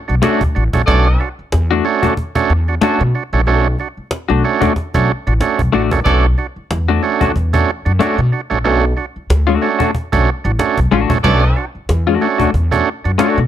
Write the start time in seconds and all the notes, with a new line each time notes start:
0.08 B1 D4 F#4, cajon slap
0.22 A3 C#4 D4 F#4, cajon slap
0.41 D2, cajon bass
0.55 A1 D4 F#4
0.73 A#1 A3 C#4 D4 F#4, cajon bass
0.87 B1 A3 B3 C#4 D4 F#4 A4 D5, cajon bass
1.20 D4 F#4, cajon slap
1.39 muted upright bass stroke
1.52 E2, cajon slap
1.71 A3 D4 F#4
1.85 A3 C#4 D4 F#4, cajon slap
2.02 D2 A3 D4 F#4, cajon bass
2.17 cajon bass, cajon slap
2.35 A3 C#4 D4 F#4, cajon bass, cajon slap
2.50 E2, cajon slap
2.68 D4 F#4, cajon slap
2.81 A3 C#4 D4 F#4, cajon slap
3.00 B2, cajon slap
3.15 D4 F#4
3.33 A#1 A3 C#4 D4 F#4
3.46 B1 A3 C#4 D4 F#4, cajon slap
3.64 cajon slap
3.79 D4 F#4, cajon slap
3.97 muted upright bass stroke
4.11 cajon slap
4.28 B1 A3 D4 F#4
4.44 A3 C#4 D4 F#4
4.61 D2 A3 D4 F#4, cajon bass
4.76 cajon bass, cajon slap
4.94 B1 A3 C#4 D4 F#4, cajon bass, cajon slap
5.09 cajon slap
5.27 A1 D4 F#4, cajon slap
5.41 A3 C#4 D4 F#4, cajon slap
5.59 B1, cajon bass
5.72 A1 A3 D4 F#4
5.91 A#1 A3 C#4 D4 F#4, cajon bass
6.05 B1 A3 B3 C#4 D4 F#4 A4 D5, cajon bass
6.38 D4 F#4, cajon slap
6.56 muted upright bass stroke
6.71 E2, cajon slap
6.88 A3 D4 F#4
7.03 A3 C#4 D4 F#4, cajon slap
7.21 D2 A3 D4 F#4, cajon bass
7.36 E2, cajon bass, cajon slap
7.53 A3 C#4 D4 F#4, cajon bass, cajon slap
7.68 cajon slap
7.85 F#2 D4 F#4, cajon slap
7.99 A3 C#4 D4 F#4, cajon slap
8.18 B2, cajon slap
8.32 D4 F#4
8.50 A#1 A3 C#4 D4 F#4
8.64 B1 A3 C#4 D4 F#4, cajon slap
8.97 D4 F#4, cajon slap
9.16 muted upright bass stroke
9.30 D2, cajon slap
9.47 A3 D4 F#4
9.62 A3 C#4 D4 F#4, cajon slap
9.79 A3 D4 F#4, cajon bass
9.95 cajon bass, cajon slap
10.12 B1 A3 C#4 D4 F#4, cajon bass, cajon slap
10.27 cajon slap
10.44 A1 D4 F#4, cajon slap
10.59 A3 C#4 D4 F#4, cajon slap
10.78 B1, cajon bass
10.91 A1 A3 D4 F#4
11.10 A#1 A3 C#4 D4 F#4, cajon bass
11.23 B1 A3 B3 C#4 D4 F#4 A4 D5, cajon bass
11.56 D4 F#4, cajon slap
11.75 muted upright bass stroke
11.89 E2, cajon slap
12.07 A3 D4 F#4
12.21 A3 C#4 D4 F#4, cajon slap
12.38 D2 A3 D4 F#4, cajon bass
12.54 E2, cajon bass, cajon slap
12.71 A3 C#4 D4 F#4, cajon bass, cajon slap
12.87 cajon slap
13.04 F#2 D4 F#4, cajon slap
13.18 A3 C#4 D4 F#4, cajon slap
13.38 B2, cajon slap